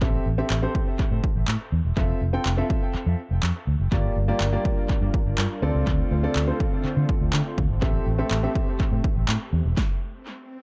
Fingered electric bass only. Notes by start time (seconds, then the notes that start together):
0.02 A1
0.26 A1
0.50 A1
0.99 muted fingered electric bass stroke
1.11 A2
1.36 A1
1.48 A2
1.72 E2
1.85 E1
1.97 F1
2.21 F1
2.46 F1
2.94 muted fingered electric bass stroke
3.06 F2
3.31 F1
3.43 F2
3.67 D2
3.79 F#1
3.92 G1
4.16 G1
4.40 G1
4.89 muted fingered electric bass stroke
5.02 G2
5.26 G1
5.38 G2
5.62 D2
5.75 C#2
5.87 D2
6.11 D2
6.36 D2
6.84 muted fingered electric bass stroke
6.97 D3
7.21 D2
7.33 D3
7.58 D2
7.70 G#1
7.82 A1
8.06 A1
8.31 A1
8.80 muted fingered electric bass stroke
8.92 A2
9.16 A1
9.28 A2
9.53 E2
9.65 E1